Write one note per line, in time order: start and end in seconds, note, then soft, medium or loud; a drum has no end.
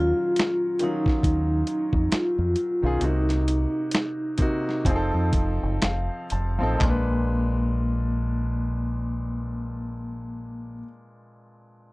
0.00 0.12 D#2 loud
0.00 0.72 D#3 medium
0.00 0.74 F#3 medium
0.00 0.73 C#4 medium
0.00 0.73 F4 medium
0.00 0.84 F4 loud
0.36 finger snap medium
0.36 snare loud
0.36 closed hi-hat medium
0.79 2.45 D#3 medium
0.79 2.46 C#4 medium
0.79 2.17 D#4 loud
0.79 2.46 F4 medium
0.79 closed hi-hat medium
0.84 2.47 F#3 medium
1.06 kick loud
1.06 snare soft
1.23 1.62 D#2 loud
1.23 kick medium
1.23 closed hi-hat medium
1.67 closed hi-hat medium
1.93 2.09 F2 loud
1.93 kick medium
2.12 2.98 F4 loud
2.12 finger snap loud
2.12 muted fingered electric bass stroke soft
2.12 snare loud
2.12 closed hi-hat medium
2.38 2.54 F2 medium
2.56 closed hi-hat medium
2.82 2.99 B1 medium
2.82 2.99 D#3 medium
2.82 3.00 C#4 medium
2.82 3.01 F4 medium
2.86 3.01 G#4 medium
3.00 3.65 C2 loud
3.00 4.29 C3 medium
3.00 4.30 A#3 medium
3.00 4.31 D#4 medium
3.00 4.31 F#4 medium
3.00 closed hi-hat medium
3.04 5.79 D#4 medium
3.29 snare soft
3.29 closed hi-hat soft
3.48 closed hi-hat medium
3.91 finger snap medium
3.91 snare loud
3.91 closed hi-hat medium
4.38 4.85 C3 medium
4.38 4.86 A#3 medium
4.38 4.86 D#4 medium
4.38 kick medium
4.38 closed hi-hat medium
4.42 4.87 F#4 loud
4.69 snare soft
4.85 5.10 F1 loud
4.85 6.45 F3 medium
4.85 6.45 C4 medium
4.85 6.46 D#4 medium
4.85 kick medium
4.85 closed hi-hat medium
4.89 4.96 G#4 medium
4.96 6.50 A4 loud
5.14 5.31 F2 loud
5.33 5.59 F1 medium
5.33 kick medium
5.33 closed hi-hat medium
5.63 5.80 F#1 medium
5.82 6.08 F1 medium
5.82 6.28 F5 medium
5.82 finger snap medium
5.82 snare loud
5.82 closed hi-hat medium
6.30 6.57 F1 medium
6.30 6.78 A5 medium
6.30 closed hi-hat medium
6.59 6.79 A1 medium
6.59 6.78 F3 medium
6.59 6.79 C4 medium
6.59 6.80 D#4 medium
6.63 6.81 A4 loud
6.73 10.74 A#2 medium
6.79 10.82 A#1 loud
6.79 10.80 G#3 medium
6.79 10.83 A#3 medium
6.79 kick loud
6.79 clap medium
6.79 floor tom loud
6.84 10.85 D4 medium
6.89 10.90 B4 medium